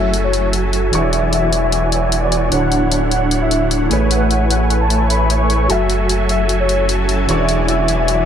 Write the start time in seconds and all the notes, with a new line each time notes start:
Already playing: F#1 F#3 E4 F#4 G#4 A4 C#5 E5 G#5
0.14 closed hi-hat
0.24 C#5
0.33 closed hi-hat
0.53 closed hi-hat
0.73 closed hi-hat
0.91 E1 E3 B3 D4 E4 F#4 G#4 C#5 D5 E5 G#5, closed hi-hat
0.95 C#6
1.13 closed hi-hat
1.33 E5, closed hi-hat
1.53 closed hi-hat
1.63 E5
1.72 closed hi-hat
1.92 E5, closed hi-hat
2.12 closed hi-hat
2.23 D5
2.32 closed hi-hat
2.50 D1 D3 A3 D4 E4 F#4 C#5 F#5, closed hi-hat
2.54 C#5
2.72 closed hi-hat
2.92 closed hi-hat
3.11 F#5, closed hi-hat
3.31 closed hi-hat
3.42 E5
3.51 closed hi-hat
3.71 closed hi-hat
3.89 A1 A3 E4 G#4 B4 C#5 G#5, closed hi-hat
3.93 C#5
4.11 F#5, closed hi-hat
4.31 closed hi-hat
4.51 F#5, closed hi-hat
4.70 closed hi-hat
4.81 A5
4.90 closed hi-hat
5.10 B5, closed hi-hat
5.30 closed hi-hat
5.41 C#6
5.50 closed hi-hat
5.68 F#1 F#3 C#4 E4 F#4 A4 E5 G#5, closed hi-hat
5.90 closed hi-hat
6.09 closed hi-hat
6.29 E5, closed hi-hat
6.49 closed hi-hat
6.60 C#5
6.69 closed hi-hat
6.89 closed hi-hat
7.09 closed hi-hat
7.27 E1 E3 B3 D4 E4 F#4 G#4 C#5 D5 E5 G#5 C#6, closed hi-hat
7.49 closed hi-hat
7.68 E5, closed hi-hat
7.88 closed hi-hat
7.99 E5
8.08 closed hi-hat